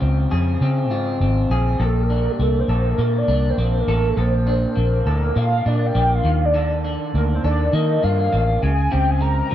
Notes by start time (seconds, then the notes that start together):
Already playing: C#3 F4 G#4
0.00 C#2 C4
0.31 F2 G#4
0.61 C#3 C4
0.90 G#2 F4
1.20 G#1 C4
1.50 A#1 G#4
1.79 A#1 A#2 A4
1.85 A4
2.02 A#4
2.10 D4
2.31 G4
2.39 C2 A#3 A4
2.60 C5
2.68 A#1 A4
2.89 A#4
2.98 A#2 A#3
3.18 D5
3.28 C2 D4
3.50 C5
3.58 A#1 A#3
3.80 A#4
3.88 A1 A4
4.09 A4
4.17 A#1 A#2 A4 C5
4.47 D4
4.76 A#1 A#3
5.06 D2 A4
5.10 A#4
5.36 A#2 A#3 F5
5.66 A#2 D4 D5
5.86 G5
5.95 A#1 A#3
6.15 F5
6.24 D#2 D#3
6.45 D5
6.54 D#3 A4
6.85 D4
7.14 D2 A#3 A#4
7.34 C5
7.44 D#2 A4 D5
7.73 D#3 A#3 D#5
8.03 G2 D4 F5
8.33 A1 A#3
8.62 C#2 C#3 G#5
8.91 C#2 C#3 C4 G5
9.10 G#5
9.21 G#3 A#5
9.51 F3